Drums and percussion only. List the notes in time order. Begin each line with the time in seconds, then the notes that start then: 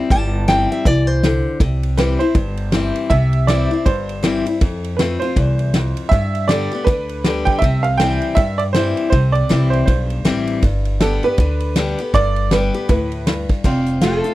0.10 kick, open hi-hat
0.48 snare, open hi-hat
0.85 kick, open hi-hat
1.23 snare, open hi-hat
1.60 kick, ride
1.83 ride
1.98 snare, ride
2.21 ride
2.35 kick, ride
2.57 ride
2.72 snare, ride
2.96 ride
3.10 kick, ride
3.33 ride
3.48 snare, ride
3.71 ride
3.86 kick, ride
4.09 ride
4.24 snare, ride
4.46 ride
4.61 kick, ride
4.84 ride
4.99 snare, ride
5.22 ride
5.36 kick, ride
5.59 ride
5.74 snare, ride
5.97 ride
6.12 kick, ride
6.35 ride
6.49 snare, ride
6.71 ride
6.87 kick, ride
7.09 ride
7.24 snare, ride
7.46 kick, ride
7.62 kick, ride
7.84 ride
8.00 snare, ride
8.22 ride
8.36 kick, ride
8.59 ride
8.74 snare, ride
8.97 ride
9.12 kick, ride
9.35 ride
9.50 snare, ride
9.73 ride
9.88 kick, ride
10.10 ride
10.25 snare, ride
10.47 ride
10.62 kick, ride
10.85 ride
11.00 snare, ride
11.23 ride
11.38 kick, ride
11.60 ride
11.76 snare, ride
11.98 ride
12.14 kick, ride
12.36 ride
12.51 snare, ride
12.74 ride
12.89 kick, ride
13.12 ride
13.27 snare, ride
13.49 kick, ride
13.64 kick, crash
13.86 closed hi-hat
14.01 snare, closed hi-hat
14.24 closed hi-hat